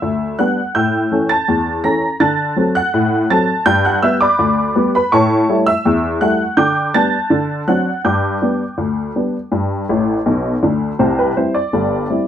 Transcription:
Already playing: E5 E6
0.02 D2
0.39 G3 B3 D4 F#5 F#6
0.75 A2 G5 E6 G6
1.12 E3 C#4 A4
1.29 A5 A6
1.48 E2
1.84 E3 C#4 A4 A#5 A#6
2.20 D3 A5 F#6 A6
2.56 F#3 C4 A4
2.75 F#5 F#6
2.94 A2
3.30 F#3 C4 A4 A5 A6
3.66 G2 G5 G6
3.85 F#5 F#6
4.03 G3 B3 G4 E5 E6
4.21 D5 B5 D6
4.39 D2
4.76 G3 B3 G4
4.95 B4 B5
5.12 A2 C#5 A5 C#6
5.49 G3 A3 E4
5.67 E5 E6
5.85 E2
6.21 G3 A3 E4 F#5 F#6
6.57 D3 G5 D6 G6
6.94 G3 B3 D4 A5 F#6 A6
7.30 D3
7.68 F#3 C4 D4 F#5 F#6
8.05 G2 G5 D6 G6
8.41 G3 B3 D4
8.78 D2
9.16 G3 B3 D4
9.52 G2
9.89 A1 A2
10.26 B1 B2
10.63 D2 D3
10.99 C2 C3 C5
11.19 B4
11.37 G3 C4 E4 C5
11.55 D5
11.73 G1 G2
12.10 G3 C4 E4

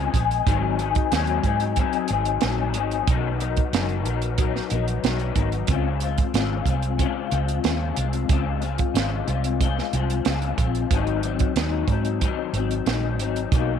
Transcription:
Already playing: C#3 F3 G#3 C4 G#4
0.14 A#1 G#3 C4 G#4, kick, closed hi-hat
0.31 closed hi-hat
0.46 G#1 G#2 D#3 F#3 C4 D#4 G#4, kick, closed hi-hat
0.79 F#3 C4 D#4 G#4, closed hi-hat
0.95 kick, closed hi-hat
1.12 D#2 G#2 D#3 F#3 C4 D#4 G#4, snare, closed hi-hat
1.27 closed hi-hat
1.43 G#2 F#3 C4 D#4 G#4, kick, closed hi-hat
1.60 closed hi-hat
1.76 F#3 C4 D#4 G#4, kick, closed hi-hat
1.93 closed hi-hat
2.08 G#1 C4 D#4 G#4, closed hi-hat
2.12 F#3
2.25 closed hi-hat
2.41 A#1 G#2 D#3 F#3 C4 D#4 G#4, snare, closed hi-hat
2.74 G#1 F#3 C4 D#4 G#4, closed hi-hat
2.91 closed hi-hat
3.07 B1 B2 D#3 F#3 B3 D#4 A#4, kick, closed hi-hat
3.40 F#3 B3 D#4 A#4, closed hi-hat
3.57 kick, closed hi-hat
3.73 F#1 B2 D#3 F#3 B3 D#4 A#4, snare, closed hi-hat
3.89 closed hi-hat
4.05 A#1 F#3 B3 D#4 A#4, closed hi-hat
4.22 closed hi-hat
4.38 F#3 B3 D#4 A#4, kick, closed hi-hat
4.56 snare
4.70 A#1 F#3 B3 D#4 A#4, closed hi-hat
4.88 closed hi-hat
5.03 B1 B2 D#3 F#3 B3 D#4 A#4, snare, closed hi-hat
5.19 closed hi-hat
5.35 G#1 F#3 B3 D#4 A#4, kick, closed hi-hat
5.52 closed hi-hat
5.67 C#2 C#3 G#3 C4 F4, kick, closed hi-hat
6.00 C4 F4, closed hi-hat
6.05 G#3
6.18 kick, closed hi-hat
6.34 G#1 C#3 G#3 C4 F4, snare, closed hi-hat
6.65 C2 C4 F4, kick, closed hi-hat
6.70 G#3
6.82 closed hi-hat
6.98 C#3 G#3 C4 F4, kick, closed hi-hat
7.31 C#2 G#3 C4 F4, closed hi-hat
7.48 closed hi-hat
7.64 D#2 C#3 G#3 C4 F4, snare, closed hi-hat
7.96 C2 G#3 C4 F4, closed hi-hat
8.13 closed hi-hat
8.29 C#2 C#3 G#3 C4 F4, kick, closed hi-hat
8.61 G#3 C4 F4, closed hi-hat
8.78 kick, closed hi-hat
8.94 G#1 C#3 G#3 C4 F4, snare, closed hi-hat
9.26 C2 G#3 C4 F4, closed hi-hat
9.44 closed hi-hat
9.61 G#3 C4 F4, kick, closed hi-hat
9.78 snare
9.93 C2 G#3 C4 F4, closed hi-hat
10.10 closed hi-hat
10.25 C#2 C#3 G#3 C4 F4, snare, closed hi-hat
10.42 closed hi-hat
10.57 A#1 G#3 C4 F4, kick, closed hi-hat
10.75 closed hi-hat
10.90 G#1 G#2 D#3 F#3 C4 D#4, kick, closed hi-hat
11.07 closed hi-hat
11.22 F#3 C4 D#4, closed hi-hat
11.39 kick, closed hi-hat
11.56 D#2 G#2 D#3 F#3 C4 D#4, snare, closed hi-hat
11.88 G#2 C4 D#4, kick, closed hi-hat
11.92 F#3
12.05 closed hi-hat
12.21 D#3 F#3 C4 D#4, kick, closed hi-hat
12.53 G#1 F#3 C4 D#4, closed hi-hat
12.71 closed hi-hat
12.86 A#1 G#2 D#3 F#3 C4 D#4, snare, closed hi-hat
13.18 G#1 F#3 C4 D#4, closed hi-hat
13.36 closed hi-hat
13.52 B1 B2 F#3 A#3 D#4, kick, closed hi-hat

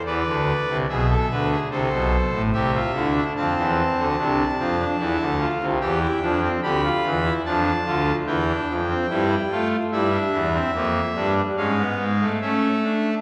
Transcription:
0.06 E2 E3 B4 D5
0.27 D2 D3
0.68 C2 C3
0.89 B1 B2 G#4 E5
1.10 A4
1.30 D2 D3 B4
1.51 G#4
1.71 C2 C3 A4 C5
1.91 B1 B2
2.33 A1 A2
2.53 C2 C3 G4 E5
2.74 F4
2.95 D2 D3 E4
3.15 D4
3.36 F2 F3 C4 A5
3.57 E2 E3
3.98 D2 D3
4.18 C2 C3 D4
4.59 F2 F3 C4
4.79 D4
4.99 E2 E3 E4
5.19 D2 D3
5.40 F4
5.60 C2 C3
5.80 E2 E3 G4 G5
6.01 E4
6.21 F2 F3 D4
6.42 C4
6.63 D2 D3 G4 B5
6.84 F4
7.04 E2 E3
7.24 E4
7.45 F2 F3 D4 A5
7.86 D2 D3 F4
8.27 E2 E3 E4 G5
8.47 D4
8.68 F2 F3
8.89 C4
9.10 G2 G3 E4
9.51 A3 F4
9.92 G2 G3 E4 E5
10.12 D4
10.33 E2 E3
10.53 C4
10.74 F2 F3 A#3
11.15 G2 G3 D4
11.57 G#2 G#3 C#4 F5
11.78 B3
11.99 G#2 G#3
12.20 A3
12.41 A3 C#4 E5
12.84 D4

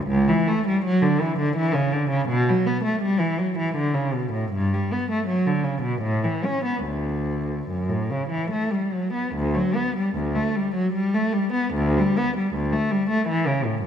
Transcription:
0.07 C#2
0.29 E3
0.48 A3
0.67 G3
0.85 F#3
1.02 D3
1.20 E3
1.39 D3
1.56 E3
1.74 C#3
1.93 D3
2.10 C#3
2.28 B2
2.49 F#3
2.66 B3
2.84 A3
3.02 G3
3.20 E3
3.38 F#3
3.58 E3
3.76 D3
3.94 C#3
4.13 B2
4.33 A2
4.52 G2
4.74 G3
4.92 B3
5.11 A3
5.27 F#3
5.47 D3
5.64 C#3
5.83 B2
6.02 A2
6.24 E3
6.45 C#4
6.65 B3
6.84 D2
7.69 F#2
7.89 A2
8.10 C#3
8.30 E3
8.51 A3
8.71 G3
8.92 F#3
9.14 B3
9.35 D2
9.55 F#3
9.75 B3
9.97 G3
10.16 D2
10.35 A3
10.56 G3
10.75 F#3
10.93 G3
11.14 A3
11.33 G3
11.53 B3
11.74 D2
11.97 G3
12.17 B3
12.37 G3
12.54 D2
12.73 A3
12.91 G3
13.10 A3
13.28 E3
13.47 C#3
13.65 A2
13.83 F#2

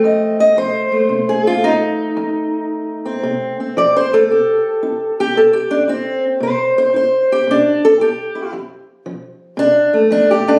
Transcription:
Already playing: A3 C4
0.04 F2 D#5
0.40 D#5
0.56 F3 C5
0.92 A3
1.09 C3
1.29 G#4
1.47 F4
1.64 D#4
2.17 F2
3.05 C4
3.23 C3
3.60 C4
3.77 F3 D5
3.97 C5
4.13 A3 A4
4.30 C3 G4
4.83 E4
5.20 G4
5.35 C3 A4
5.53 G4
5.71 D4
5.88 C4 E4
6.40 C3 C5
6.78 C5
6.94 E4 C5
7.32 G4
7.47 C3 D4
7.85 A4
8.00 E4 G4
8.35 E4
8.53 F2
9.06 F3
9.57 C3 D4
9.93 A3
10.11 F3 D4
10.31 G4
10.48 A3 D4

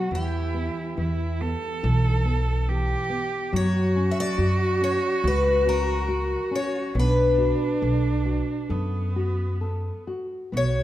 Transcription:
Already playing: F#3 F#4
0.11 E2 E3 E4
0.15 G4
0.54 B3
0.97 E2 E3 E4
1.41 B3 A4
1.83 B1 E3
2.25 B3
2.68 E3 G4
3.10 B3
3.52 F#2 F#3 F#4 C#5
3.96 C#4
4.11 E5
4.20 D5
4.38 F#2 F#4
4.81 C#4 C#5
5.24 C#2 F#4 B4
5.65 C#4 A#4
6.08 F#4
6.51 C#4
6.55 C#5
6.95 B1 B3 D4
6.99 B4
7.38 F#4
7.82 B1 A4
8.25 F#4
8.69 F#2 B3 A4
9.16 F#4
9.61 A4
10.07 F#4
10.52 B1 B3 F#4
10.57 C#5

